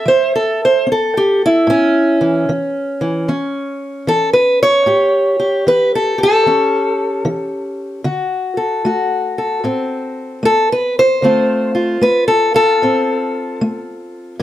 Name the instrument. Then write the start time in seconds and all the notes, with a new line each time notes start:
steel-string acoustic guitar
Already playing: C#4 E5
0.06 E3 C5
0.36 A4
0.65 C5
0.87 C#4
0.92 A4
1.17 G4
1.46 E4
1.67 A2 C#4
2.21 E3
2.49 E3
3.01 E3
3.28 E3 C#4
4.07 E3 A4
4.33 B4
4.63 C#5
4.86 A2 G4
5.40 G4
5.67 E3 B4
5.95 A4
6.18 G4
6.23 A4
6.46 E3 C#4
7.25 E3
8.04 D3 F#4
8.57 A4
8.85 A3 F#4
9.38 A4
9.64 A2 C4
10.43 A3 A4
10.72 B4
10.99 C5
11.22 D3 A3 C4 F4
11.75 F4
12.01 A3 B4
12.28 A4
12.54 F4 A4
12.82 A2 C4
13.61 A3